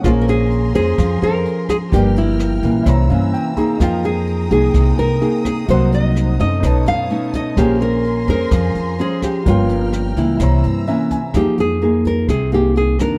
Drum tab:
HH |xxxxxxxx|xxxxxxxx|xxxxxxxx|xxxxxxxx|
SD |r---r--r|--r-r---|r---r--r|--r-r---|
BD |o--oo--o|o--oo--o|o--oo--o|o--oo--o|

HH |xxxxxxxx|xxxxxxxx|xxxxxxxx|
SD |r---r--r|--r-r---|r---r--r|
BD |o--oo--o|o--oo--o|o--oo--o|